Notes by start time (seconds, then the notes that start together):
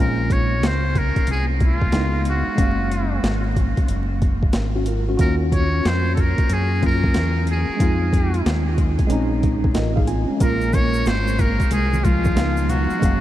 Already playing: A#1 G#3 A#3
0.00 C#4 F4 A#4
0.30 C#5, kick, closed hi-hat
0.63 C#2, snare, closed hi-hat
0.67 C5
0.95 A#4, kick, closed hi-hat
1.16 muted fingered electric bass stroke, kick, closed hi-hat
1.27 C2, closed hi-hat
1.31 G#4
1.60 kick, closed hi-hat
1.65 F4
1.82 kick
1.92 C#2 G#3 B3 D#4 E4, snare, closed hi-hat
2.01 F5
2.25 closed hi-hat
2.29 F#4
2.47 muted fingered electric bass stroke
2.56 F#1 G#3 A#3 C#4, kick, closed hi-hat
2.61 F5
2.92 closed hi-hat
3.23 G#1, snare, closed hi-hat
3.56 kick, closed hi-hat
3.77 kick, closed hi-hat
3.88 F#1, closed hi-hat
4.22 kick, closed hi-hat
4.43 kick
4.53 G#1, snare, closed hi-hat
4.75 C#4 F#4
4.86 F4 A#4, closed hi-hat
5.09 C#4 F#4
5.17 D#2 A#3 C#4 F#4 A#4, kick, closed hi-hat
5.22 F4
5.52 C#5, kick, closed hi-hat
5.85 F2 C5, snare, closed hi-hat
6.15 A4, kick, closed hi-hat
6.20 A#4
6.38 muted fingered electric bass stroke, kick, closed hi-hat
6.50 F#2 G#4, closed hi-hat
6.80 F#3 A#3 C#4 F4, kick, closed hi-hat
6.86 A#4
7.04 kick
7.14 E2, snare, closed hi-hat
7.47 closed hi-hat
7.51 G#4
7.69 muted fingered electric bass stroke
7.77 F2 G#3 C4 D#4, kick, closed hi-hat
7.82 F4
8.13 kick, closed hi-hat
8.34 closed hi-hat
8.46 D#2, snare, closed hi-hat
8.78 kick, closed hi-hat
8.99 kick, closed hi-hat
9.07 A#1 G#3 C4 C#4, closed hi-hat
9.12 D#4
9.43 kick, closed hi-hat
9.64 kick
9.74 A1 F4 A#4 D#5, snare, closed hi-hat
9.96 D#4 G#4 F5, kick
10.07 C4 F4 G#5, closed hi-hat
10.29 G#3 C#4, muted fingered electric bass stroke
10.37 A#1 G#3 A#3, kick, closed hi-hat, shaker
10.42 F4 A#4
10.61 shaker
10.73 C#4 C#5, kick, closed hi-hat, high conga, shaker
10.94 shaker
11.06 G#1 C4 C5, snare, closed hi-hat, shaker
11.27 shaker
11.39 A#3 A#4, kick, closed hi-hat, low conga, shaker
11.60 kick, closed hi-hat, shaker
11.71 C2 G#3 G#4, closed hi-hat, shaker
11.93 high conga, shaker
12.03 F3 F4, kick, closed hi-hat, shaker
12.24 kick, high conga, shaker
12.35 C#2 G#3 B3 D#4 F5, snare, closed hi-hat, shaker
12.57 shaker
12.69 F#3 F#4, closed hi-hat, low conga, shaker
12.90 shaker
12.99 F#1 G#3 A#3 C#4, kick, closed hi-hat, shaker
13.05 F5